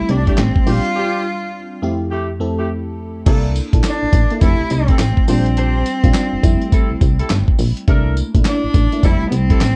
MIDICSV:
0, 0, Header, 1, 6, 480
1, 0, Start_track
1, 0, Key_signature, -1, "major"
1, 0, Tempo, 576923
1, 795, Time_signature, 4, 2, 24, 8
1, 8119, End_track
2, 0, Start_track
2, 0, Title_t, "Horn section"
2, 0, Program_c, 0, 61
2, 224, Note_on_c, 0, 57, 76
2, 227, Note_on_c, 0, 64, 69
2, 230, Note_on_c, 0, 67, 80
2, 321, Note_off_c, 0, 57, 0
2, 323, Note_off_c, 0, 64, 0
2, 324, Note_off_c, 0, 67, 0
2, 552, Note_on_c, 0, 60, 77
2, 555, Note_on_c, 0, 62, 67
2, 558, Note_on_c, 0, 67, 83
2, 707, Note_off_c, 0, 60, 0
2, 709, Note_off_c, 0, 62, 0
2, 710, Note_off_c, 0, 67, 0
2, 793, Note_on_c, 0, 60, 88
2, 796, Note_on_c, 0, 62, 85
2, 799, Note_on_c, 0, 67, 104
2, 1020, Note_off_c, 0, 60, 0
2, 1021, Note_off_c, 0, 62, 0
2, 1023, Note_off_c, 0, 67, 0
2, 1753, Note_on_c, 0, 57, 80
2, 1754, Note_on_c, 0, 64, 71
2, 1757, Note_on_c, 0, 67, 84
2, 1908, Note_off_c, 0, 57, 0
2, 1908, Note_off_c, 0, 64, 0
2, 1910, Note_off_c, 0, 67, 0
2, 2142, Note_on_c, 0, 57, 74
2, 2145, Note_on_c, 0, 64, 68
2, 2147, Note_on_c, 0, 67, 81
2, 2241, Note_off_c, 0, 57, 0
2, 2242, Note_off_c, 0, 64, 0
2, 2243, Note_off_c, 0, 67, 0
2, 2713, Note_on_c, 0, 58, 87
2, 2714, Note_on_c, 0, 62, 85
2, 2717, Note_on_c, 0, 64, 81
2, 2719, Note_on_c, 0, 69, 101
2, 2939, Note_off_c, 0, 58, 0
2, 2940, Note_off_c, 0, 62, 0
2, 2941, Note_off_c, 0, 64, 0
2, 2943, Note_off_c, 0, 69, 0
2, 3670, Note_on_c, 0, 64, 79
2, 3673, Note_on_c, 0, 67, 71
2, 3676, Note_on_c, 0, 69, 83
2, 3826, Note_off_c, 0, 64, 0
2, 3828, Note_off_c, 0, 67, 0
2, 3829, Note_off_c, 0, 69, 0
2, 4063, Note_on_c, 0, 64, 77
2, 4065, Note_on_c, 0, 67, 65
2, 4068, Note_on_c, 0, 69, 79
2, 4161, Note_off_c, 0, 64, 0
2, 4162, Note_off_c, 0, 67, 0
2, 4163, Note_off_c, 0, 69, 0
2, 4392, Note_on_c, 0, 62, 76
2, 4394, Note_on_c, 0, 67, 70
2, 4396, Note_on_c, 0, 72, 83
2, 4547, Note_off_c, 0, 62, 0
2, 4548, Note_off_c, 0, 67, 0
2, 4549, Note_off_c, 0, 72, 0
2, 4631, Note_on_c, 0, 62, 86
2, 4633, Note_on_c, 0, 67, 80
2, 4635, Note_on_c, 0, 72, 100
2, 4858, Note_off_c, 0, 62, 0
2, 4860, Note_off_c, 0, 67, 0
2, 4860, Note_off_c, 0, 72, 0
2, 5593, Note_on_c, 0, 64, 75
2, 5596, Note_on_c, 0, 67, 71
2, 5599, Note_on_c, 0, 69, 95
2, 5748, Note_off_c, 0, 64, 0
2, 5749, Note_off_c, 0, 67, 0
2, 5751, Note_off_c, 0, 69, 0
2, 5979, Note_on_c, 0, 64, 75
2, 5982, Note_on_c, 0, 67, 70
2, 5985, Note_on_c, 0, 69, 89
2, 6079, Note_off_c, 0, 64, 0
2, 6081, Note_off_c, 0, 67, 0
2, 6082, Note_off_c, 0, 69, 0
2, 6552, Note_on_c, 0, 62, 85
2, 6554, Note_on_c, 0, 64, 78
2, 6556, Note_on_c, 0, 69, 83
2, 6557, Note_on_c, 0, 70, 108
2, 6779, Note_off_c, 0, 62, 0
2, 6780, Note_off_c, 0, 64, 0
2, 6781, Note_off_c, 0, 69, 0
2, 6782, Note_off_c, 0, 70, 0
2, 7513, Note_on_c, 0, 64, 81
2, 7515, Note_on_c, 0, 67, 77
2, 7517, Note_on_c, 0, 69, 89
2, 7668, Note_off_c, 0, 64, 0
2, 7669, Note_off_c, 0, 67, 0
2, 7670, Note_off_c, 0, 69, 0
2, 7903, Note_on_c, 0, 64, 80
2, 7905, Note_on_c, 0, 67, 71
2, 7908, Note_on_c, 0, 69, 88
2, 8001, Note_off_c, 0, 64, 0
2, 8002, Note_off_c, 0, 67, 0
2, 8003, Note_off_c, 0, 69, 0
2, 8119, End_track
3, 0, Start_track
3, 0, Title_t, "Cello"
3, 0, Program_c, 1, 42
3, 0, Note_on_c, 1, 64, 97
3, 86, Note_on_c, 1, 62, 94
3, 98, Note_off_c, 1, 64, 0
3, 323, Note_on_c, 1, 60, 99
3, 336, Note_off_c, 1, 62, 0
3, 567, Note_on_c, 1, 65, 127
3, 580, Note_off_c, 1, 60, 0
3, 1521, Note_off_c, 1, 65, 0
3, 3208, Note_on_c, 1, 62, 110
3, 3648, Note_off_c, 1, 62, 0
3, 3685, Note_on_c, 1, 64, 111
3, 3928, Note_on_c, 1, 60, 101
3, 3940, Note_off_c, 1, 64, 0
3, 4401, Note_off_c, 1, 60, 0
3, 4405, Note_on_c, 1, 60, 110
3, 6287, Note_off_c, 1, 60, 0
3, 7045, Note_on_c, 1, 62, 117
3, 7530, Note_on_c, 1, 64, 104
3, 7543, Note_off_c, 1, 62, 0
3, 7719, Note_off_c, 1, 64, 0
3, 7729, Note_on_c, 1, 59, 78
3, 7773, Note_on_c, 1, 60, 108
3, 7785, Note_off_c, 1, 59, 0
3, 8119, Note_off_c, 1, 60, 0
3, 8119, End_track
4, 0, Start_track
4, 0, Title_t, "FM electric piano"
4, 0, Program_c, 2, 5
4, 0, Note_on_c, 2, 55, 77
4, 0, Note_on_c, 2, 57, 73
4, 0, Note_on_c, 2, 60, 74
4, 0, Note_on_c, 2, 64, 93
4, 8, Control_c, 2, 64, 127
4, 73, Note_off_c, 2, 55, 0
4, 73, Note_on_c, 2, 55, 70
4, 77, Note_off_c, 2, 57, 0
4, 77, Note_on_c, 2, 57, 65
4, 81, Note_off_c, 2, 60, 0
4, 81, Note_on_c, 2, 60, 65
4, 84, Note_on_c, 2, 67, 81
4, 543, Note_off_c, 2, 55, 0
4, 544, Note_off_c, 2, 60, 0
4, 553, Note_on_c, 2, 55, 76
4, 554, Note_on_c, 2, 60, 69
4, 556, Note_off_c, 2, 57, 0
4, 560, Note_off_c, 2, 67, 0
4, 560, Note_on_c, 2, 62, 73
4, 562, Note_on_c, 2, 65, 82
4, 566, Control_c, 2, 64, 0
4, 567, Note_off_c, 2, 64, 0
4, 710, Control_c, 2, 64, 127
4, 1334, Note_off_c, 2, 55, 0
4, 1335, Note_off_c, 2, 60, 0
4, 1337, Note_off_c, 2, 62, 0
4, 1338, Note_off_c, 2, 65, 0
4, 1515, Note_on_c, 2, 41, 99
4, 1516, Note_on_c, 2, 57, 89
4, 1520, Note_on_c, 2, 60, 90
4, 1522, Note_on_c, 2, 64, 85
4, 1525, Control_c, 2, 64, 0
4, 1526, Note_on_c, 2, 67, 104
4, 1663, Control_c, 2, 64, 127
4, 1923, Note_off_c, 2, 41, 0
4, 1923, Note_off_c, 2, 57, 0
4, 1925, Note_off_c, 2, 60, 0
4, 1926, Note_off_c, 2, 64, 0
4, 1928, Note_off_c, 2, 67, 0
4, 1994, Note_on_c, 2, 41, 86
4, 1997, Note_on_c, 2, 57, 83
4, 1999, Note_on_c, 2, 60, 83
4, 2001, Note_on_c, 2, 64, 78
4, 2004, Note_on_c, 2, 69, 100
4, 2496, Note_off_c, 2, 41, 0
4, 2498, Note_off_c, 2, 57, 0
4, 2499, Note_off_c, 2, 60, 0
4, 2500, Note_off_c, 2, 64, 0
4, 2501, Note_off_c, 2, 69, 0
4, 2715, Note_on_c, 2, 58, 93
4, 2719, Note_on_c, 2, 62, 80
4, 2724, Control_c, 2, 64, 0
4, 2724, Note_on_c, 2, 64, 75
4, 2726, Note_on_c, 2, 69, 97
4, 2878, Control_c, 2, 64, 127
4, 2966, Note_off_c, 2, 58, 0
4, 2968, Note_off_c, 2, 62, 0
4, 2970, Note_off_c, 2, 64, 0
4, 2971, Note_off_c, 2, 69, 0
4, 3103, Note_on_c, 2, 58, 77
4, 3107, Note_on_c, 2, 62, 69
4, 3109, Note_on_c, 2, 64, 70
4, 3113, Note_on_c, 2, 69, 87
4, 3413, Note_off_c, 2, 58, 0
4, 3415, Note_off_c, 2, 62, 0
4, 3416, Note_off_c, 2, 64, 0
4, 3418, Note_off_c, 2, 69, 0
4, 3586, Note_on_c, 2, 58, 77
4, 3589, Note_on_c, 2, 62, 60
4, 3593, Note_on_c, 2, 64, 66
4, 3595, Note_on_c, 2, 69, 73
4, 3672, Note_off_c, 2, 64, 0
4, 3675, Note_off_c, 2, 58, 0
4, 3675, Note_on_c, 2, 57, 79
4, 3677, Note_off_c, 2, 62, 0
4, 3678, Note_on_c, 2, 60, 70
4, 3680, Note_off_c, 2, 69, 0
4, 3682, Note_on_c, 2, 64, 76
4, 3685, Control_c, 2, 64, 0
4, 3687, Note_on_c, 2, 67, 86
4, 3847, Control_c, 2, 64, 127
4, 4275, Note_off_c, 2, 57, 0
4, 4276, Note_off_c, 2, 60, 0
4, 4278, Note_off_c, 2, 64, 0
4, 4280, Note_off_c, 2, 67, 0
4, 4391, Note_on_c, 2, 55, 74
4, 4396, Note_on_c, 2, 60, 64
4, 4400, Note_on_c, 2, 62, 72
4, 4403, Note_on_c, 2, 65, 78
4, 4406, Control_c, 2, 64, 0
4, 4560, Control_c, 2, 64, 127
4, 4873, Note_off_c, 2, 55, 0
4, 4875, Note_off_c, 2, 60, 0
4, 4877, Note_off_c, 2, 62, 0
4, 4879, Note_off_c, 2, 65, 0
4, 5020, Note_on_c, 2, 55, 87
4, 5023, Note_on_c, 2, 60, 79
4, 5027, Note_on_c, 2, 62, 86
4, 5029, Note_on_c, 2, 65, 103
4, 5331, Note_off_c, 2, 55, 0
4, 5333, Note_off_c, 2, 60, 0
4, 5335, Note_off_c, 2, 62, 0
4, 5336, Note_off_c, 2, 65, 0
4, 5349, Note_on_c, 2, 55, 102
4, 5354, Note_on_c, 2, 57, 89
4, 5357, Note_on_c, 2, 60, 92
4, 5361, Note_on_c, 2, 64, 112
4, 5364, Control_c, 2, 64, 0
4, 5511, Control_c, 2, 64, 127
4, 6132, Note_off_c, 2, 55, 0
4, 6135, Note_off_c, 2, 57, 0
4, 6136, Note_off_c, 2, 60, 0
4, 6138, Note_off_c, 2, 64, 0
4, 6553, Note_on_c, 2, 57, 89
4, 6557, Note_on_c, 2, 58, 77
4, 6559, Note_on_c, 2, 62, 83
4, 6564, Note_on_c, 2, 64, 96
4, 6566, Control_c, 2, 64, 0
4, 6733, Control_c, 2, 64, 127
4, 6805, Note_off_c, 2, 57, 0
4, 6807, Note_off_c, 2, 58, 0
4, 6808, Note_off_c, 2, 62, 0
4, 6810, Note_off_c, 2, 64, 0
4, 6942, Note_on_c, 2, 57, 71
4, 6948, Note_on_c, 2, 58, 69
4, 6948, Note_on_c, 2, 62, 72
4, 6953, Note_on_c, 2, 64, 81
4, 7253, Note_off_c, 2, 57, 0
4, 7255, Note_off_c, 2, 58, 0
4, 7255, Note_off_c, 2, 62, 0
4, 7258, Note_off_c, 2, 64, 0
4, 7424, Note_on_c, 2, 57, 74
4, 7427, Note_on_c, 2, 58, 68
4, 7429, Note_on_c, 2, 62, 67
4, 7434, Note_on_c, 2, 64, 83
4, 7512, Note_off_c, 2, 57, 0
4, 7516, Note_off_c, 2, 58, 0
4, 7517, Note_off_c, 2, 62, 0
4, 7517, Note_off_c, 2, 64, 0
4, 7518, Note_on_c, 2, 55, 86
4, 7522, Note_on_c, 2, 57, 71
4, 7524, Control_c, 2, 64, 0
4, 7524, Note_on_c, 2, 60, 74
4, 7527, Note_on_c, 2, 64, 90
4, 7659, Control_c, 2, 64, 127
4, 8116, Note_off_c, 2, 55, 0
4, 8118, Note_off_c, 2, 57, 0
4, 8119, Note_off_c, 2, 60, 0
4, 8119, Note_off_c, 2, 64, 0
4, 8119, End_track
5, 0, Start_track
5, 0, Title_t, "FM bass"
5, 0, Program_c, 3, 39
5, 77, Note_on_c, 3, 36, 92
5, 252, Note_off_c, 3, 36, 0
5, 316, Note_on_c, 3, 33, 95
5, 425, Note_off_c, 3, 33, 0
5, 555, Note_on_c, 3, 34, 101
5, 664, Note_off_c, 3, 34, 0
5, 2717, Note_on_c, 3, 36, 105
5, 3001, Note_off_c, 3, 36, 0
5, 3105, Note_on_c, 3, 34, 74
5, 3171, Note_off_c, 3, 34, 0
5, 3350, Note_on_c, 3, 33, 46
5, 3385, Note_off_c, 3, 33, 0
5, 3437, Note_on_c, 3, 33, 94
5, 3546, Note_off_c, 3, 33, 0
5, 3675, Note_on_c, 3, 29, 105
5, 3785, Note_off_c, 3, 29, 0
5, 3828, Note_on_c, 3, 36, 50
5, 3863, Note_off_c, 3, 36, 0
5, 3917, Note_on_c, 3, 36, 89
5, 4092, Note_off_c, 3, 36, 0
5, 4155, Note_on_c, 3, 33, 97
5, 4265, Note_off_c, 3, 33, 0
5, 4395, Note_on_c, 3, 34, 104
5, 4856, Note_off_c, 3, 34, 0
5, 5024, Note_on_c, 3, 34, 86
5, 5090, Note_off_c, 3, 34, 0
5, 5265, Note_on_c, 3, 29, 48
5, 5301, Note_off_c, 3, 29, 0
5, 5353, Note_on_c, 3, 29, 105
5, 5463, Note_off_c, 3, 29, 0
5, 5747, Note_on_c, 3, 36, 47
5, 5782, Note_off_c, 3, 36, 0
5, 5835, Note_on_c, 3, 36, 92
5, 6010, Note_off_c, 3, 36, 0
5, 6077, Note_on_c, 3, 31, 92
5, 6186, Note_off_c, 3, 31, 0
5, 6314, Note_on_c, 3, 34, 103
5, 6424, Note_off_c, 3, 34, 0
5, 6556, Note_on_c, 3, 36, 105
5, 6841, Note_off_c, 3, 36, 0
5, 6945, Note_on_c, 3, 34, 72
5, 7011, Note_off_c, 3, 34, 0
5, 7188, Note_on_c, 3, 33, 48
5, 7223, Note_off_c, 3, 33, 0
5, 7275, Note_on_c, 3, 33, 98
5, 7384, Note_off_c, 3, 33, 0
5, 7518, Note_on_c, 3, 29, 104
5, 7626, Note_off_c, 3, 29, 0
5, 7665, Note_on_c, 3, 36, 48
5, 7701, Note_off_c, 3, 36, 0
5, 7752, Note_on_c, 3, 36, 88
5, 7928, Note_off_c, 3, 36, 0
5, 7996, Note_on_c, 3, 33, 91
5, 8105, Note_off_c, 3, 33, 0
5, 8119, End_track
6, 0, Start_track
6, 0, Title_t, "Drums"
6, 73, Note_on_c, 9, 42, 72
6, 157, Note_off_c, 9, 42, 0
6, 226, Note_on_c, 9, 36, 82
6, 226, Note_on_c, 9, 42, 53
6, 309, Note_off_c, 9, 36, 0
6, 309, Note_off_c, 9, 42, 0
6, 312, Note_on_c, 9, 39, 79
6, 313, Note_on_c, 9, 42, 58
6, 314, Note_on_c, 9, 38, 117
6, 396, Note_off_c, 9, 39, 0
6, 396, Note_off_c, 9, 42, 0
6, 398, Note_off_c, 9, 38, 0
6, 463, Note_on_c, 9, 36, 99
6, 547, Note_off_c, 9, 36, 0
6, 555, Note_on_c, 9, 46, 75
6, 638, Note_off_c, 9, 46, 0
6, 705, Note_on_c, 9, 42, 46
6, 788, Note_off_c, 9, 42, 0
6, 2715, Note_on_c, 9, 42, 66
6, 2715, Note_on_c, 9, 49, 97
6, 2716, Note_on_c, 9, 36, 119
6, 2798, Note_off_c, 9, 42, 0
6, 2798, Note_off_c, 9, 49, 0
6, 2799, Note_off_c, 9, 36, 0
6, 2959, Note_on_c, 9, 42, 72
6, 2960, Note_on_c, 9, 54, 74
6, 3042, Note_off_c, 9, 42, 0
6, 3043, Note_off_c, 9, 54, 0
6, 3104, Note_on_c, 9, 36, 96
6, 3105, Note_on_c, 9, 42, 63
6, 3187, Note_off_c, 9, 36, 0
6, 3188, Note_off_c, 9, 42, 0
6, 3190, Note_on_c, 9, 39, 102
6, 3192, Note_on_c, 9, 38, 126
6, 3193, Note_on_c, 9, 54, 88
6, 3194, Note_on_c, 9, 42, 69
6, 3273, Note_off_c, 9, 39, 0
6, 3275, Note_off_c, 9, 38, 0
6, 3276, Note_off_c, 9, 54, 0
6, 3277, Note_off_c, 9, 42, 0
6, 3433, Note_on_c, 9, 54, 66
6, 3434, Note_on_c, 9, 36, 115
6, 3435, Note_on_c, 9, 42, 99
6, 3516, Note_off_c, 9, 54, 0
6, 3517, Note_off_c, 9, 36, 0
6, 3518, Note_off_c, 9, 42, 0
6, 3581, Note_on_c, 9, 42, 46
6, 3664, Note_off_c, 9, 42, 0
6, 3671, Note_on_c, 9, 42, 69
6, 3671, Note_on_c, 9, 54, 71
6, 3673, Note_on_c, 9, 36, 113
6, 3754, Note_off_c, 9, 42, 0
6, 3754, Note_off_c, 9, 54, 0
6, 3756, Note_off_c, 9, 36, 0
6, 3911, Note_on_c, 9, 42, 75
6, 3911, Note_on_c, 9, 54, 64
6, 3994, Note_off_c, 9, 54, 0
6, 3995, Note_off_c, 9, 42, 0
6, 4061, Note_on_c, 9, 42, 61
6, 4065, Note_on_c, 9, 36, 86
6, 4145, Note_off_c, 9, 42, 0
6, 4148, Note_off_c, 9, 36, 0
6, 4150, Note_on_c, 9, 39, 83
6, 4150, Note_on_c, 9, 42, 64
6, 4151, Note_on_c, 9, 54, 90
6, 4152, Note_on_c, 9, 38, 113
6, 4233, Note_off_c, 9, 39, 0
6, 4234, Note_off_c, 9, 42, 0
6, 4234, Note_off_c, 9, 54, 0
6, 4235, Note_off_c, 9, 38, 0
6, 4303, Note_on_c, 9, 36, 94
6, 4386, Note_off_c, 9, 36, 0
6, 4391, Note_on_c, 9, 54, 74
6, 4394, Note_on_c, 9, 46, 80
6, 4474, Note_off_c, 9, 54, 0
6, 4477, Note_off_c, 9, 46, 0
6, 4543, Note_on_c, 9, 42, 50
6, 4626, Note_off_c, 9, 42, 0
6, 4634, Note_on_c, 9, 42, 67
6, 4717, Note_off_c, 9, 42, 0
6, 4874, Note_on_c, 9, 42, 77
6, 4875, Note_on_c, 9, 54, 71
6, 4958, Note_off_c, 9, 42, 0
6, 4958, Note_off_c, 9, 54, 0
6, 5022, Note_on_c, 9, 36, 95
6, 5022, Note_on_c, 9, 42, 56
6, 5106, Note_off_c, 9, 36, 0
6, 5106, Note_off_c, 9, 42, 0
6, 5108, Note_on_c, 9, 39, 101
6, 5110, Note_on_c, 9, 38, 120
6, 5112, Note_on_c, 9, 42, 65
6, 5112, Note_on_c, 9, 54, 95
6, 5191, Note_off_c, 9, 39, 0
6, 5194, Note_off_c, 9, 38, 0
6, 5195, Note_off_c, 9, 42, 0
6, 5195, Note_off_c, 9, 54, 0
6, 5353, Note_on_c, 9, 36, 113
6, 5353, Note_on_c, 9, 54, 69
6, 5355, Note_on_c, 9, 42, 88
6, 5436, Note_off_c, 9, 36, 0
6, 5436, Note_off_c, 9, 54, 0
6, 5438, Note_off_c, 9, 42, 0
6, 5504, Note_on_c, 9, 42, 45
6, 5587, Note_off_c, 9, 42, 0
6, 5593, Note_on_c, 9, 36, 110
6, 5594, Note_on_c, 9, 42, 70
6, 5594, Note_on_c, 9, 54, 67
6, 5677, Note_off_c, 9, 36, 0
6, 5677, Note_off_c, 9, 42, 0
6, 5677, Note_off_c, 9, 54, 0
6, 5833, Note_on_c, 9, 54, 59
6, 5834, Note_on_c, 9, 36, 99
6, 5834, Note_on_c, 9, 42, 73
6, 5916, Note_off_c, 9, 54, 0
6, 5917, Note_off_c, 9, 36, 0
6, 5917, Note_off_c, 9, 42, 0
6, 5985, Note_on_c, 9, 42, 62
6, 6069, Note_off_c, 9, 42, 0
6, 6072, Note_on_c, 9, 39, 89
6, 6072, Note_on_c, 9, 42, 65
6, 6073, Note_on_c, 9, 54, 95
6, 6074, Note_on_c, 9, 38, 117
6, 6155, Note_off_c, 9, 39, 0
6, 6155, Note_off_c, 9, 42, 0
6, 6156, Note_off_c, 9, 54, 0
6, 6157, Note_off_c, 9, 38, 0
6, 6222, Note_on_c, 9, 36, 95
6, 6306, Note_off_c, 9, 36, 0
6, 6311, Note_on_c, 9, 54, 71
6, 6314, Note_on_c, 9, 46, 76
6, 6395, Note_off_c, 9, 54, 0
6, 6397, Note_off_c, 9, 46, 0
6, 6464, Note_on_c, 9, 42, 50
6, 6547, Note_off_c, 9, 42, 0
6, 6553, Note_on_c, 9, 42, 63
6, 6554, Note_on_c, 9, 36, 119
6, 6637, Note_off_c, 9, 36, 0
6, 6637, Note_off_c, 9, 42, 0
6, 6796, Note_on_c, 9, 42, 68
6, 6797, Note_on_c, 9, 54, 75
6, 6880, Note_off_c, 9, 42, 0
6, 6880, Note_off_c, 9, 54, 0
6, 6944, Note_on_c, 9, 36, 95
6, 6944, Note_on_c, 9, 42, 59
6, 7027, Note_off_c, 9, 36, 0
6, 7027, Note_off_c, 9, 42, 0
6, 7029, Note_on_c, 9, 39, 96
6, 7031, Note_on_c, 9, 38, 125
6, 7032, Note_on_c, 9, 42, 63
6, 7032, Note_on_c, 9, 54, 88
6, 7112, Note_off_c, 9, 39, 0
6, 7114, Note_off_c, 9, 38, 0
6, 7115, Note_off_c, 9, 54, 0
6, 7116, Note_off_c, 9, 42, 0
6, 7273, Note_on_c, 9, 54, 74
6, 7274, Note_on_c, 9, 36, 108
6, 7275, Note_on_c, 9, 42, 87
6, 7356, Note_off_c, 9, 54, 0
6, 7357, Note_off_c, 9, 36, 0
6, 7358, Note_off_c, 9, 42, 0
6, 7424, Note_on_c, 9, 42, 47
6, 7507, Note_off_c, 9, 42, 0
6, 7515, Note_on_c, 9, 36, 108
6, 7515, Note_on_c, 9, 42, 70
6, 7515, Note_on_c, 9, 54, 71
6, 7598, Note_off_c, 9, 36, 0
6, 7598, Note_off_c, 9, 42, 0
6, 7598, Note_off_c, 9, 54, 0
6, 7754, Note_on_c, 9, 54, 63
6, 7755, Note_on_c, 9, 42, 73
6, 7838, Note_off_c, 9, 42, 0
6, 7838, Note_off_c, 9, 54, 0
6, 7905, Note_on_c, 9, 42, 62
6, 7906, Note_on_c, 9, 36, 87
6, 7988, Note_off_c, 9, 42, 0
6, 7989, Note_off_c, 9, 36, 0
6, 7994, Note_on_c, 9, 39, 88
6, 7995, Note_on_c, 9, 42, 62
6, 7995, Note_on_c, 9, 54, 85
6, 7996, Note_on_c, 9, 38, 112
6, 8078, Note_off_c, 9, 39, 0
6, 8078, Note_off_c, 9, 42, 0
6, 8079, Note_off_c, 9, 54, 0
6, 8080, Note_off_c, 9, 38, 0
6, 8119, End_track
0, 0, End_of_file